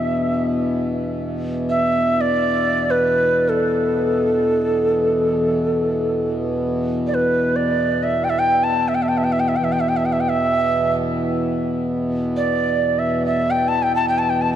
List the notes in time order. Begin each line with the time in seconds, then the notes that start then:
Already playing: E2 B2 D4 E5
1.69 E5
2.21 D5
2.90 B4
3.49 A4
7.07 D5
7.15 B4
7.56 D5
8.03 E5
8.24 G5
8.29 E5
8.39 G5
8.63 A5
8.88 E5
8.95 G5
9.03 E5
9.08 G5
9.17 E5
9.24 G5
9.32 E5
9.40 G5
9.48 E5
9.56 E2 B2 G5
9.64 E5
9.72 G5
9.80 E5
9.89 G5
9.96 E5
10.05 G5
10.12 E5
10.20 G5
10.30 E5
12.36 D5
12.99 E5
13.26 E5
13.50 G5
13.68 A5
13.82 G5
13.95 A5
14.09 G5
14.18 A5
14.29 G5
14.41 A5